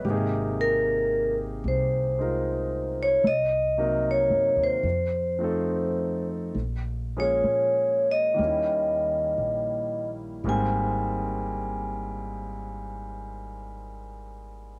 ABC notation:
X:1
M:4/4
L:1/8
Q:"Swing" 1/4=68
K:Ab
V:1 name="Vibraphone"
z B2 z c3 d | e2 d c4 z | z d2 e4 z | a8 |]
V:2 name="Grand piano"
=B z6 z | z8 | z8 | z8 |]
V:3 name="Grand piano"
[C,B,EGA]4- [C,B,EGA] [A,EFB]3 | z [C,_G,B,EB]3 z [F,=A,CE=A]3 | z [F,A,B,DA]3 [E,G,B,D_F]4 | [A,,G,A,B,C]8 |]
V:4 name="Upright bass" clef=bass
A,,,4 C,,4 | C,,2- (3C,, _G,, E,, F,,4 | B,,,2 B,,2 E,,2 B,,,2 | A,,,8 |]